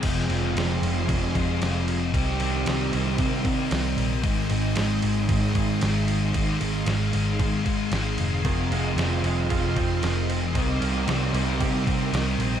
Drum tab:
CC |xxxxxxxx|xxxxxxxx|xxxxxxxx|xxxxxxxx|
SD |--o---o-|--o---o-|--o---o-|--o---o-|
BD |o---oo--|o---oo--|o---oo--|o---oo--|

CC |xxxxxxxx|xxxxxxxx|
SD |--o---o-|--o---o-|
BD |o---oo--|o---oo--|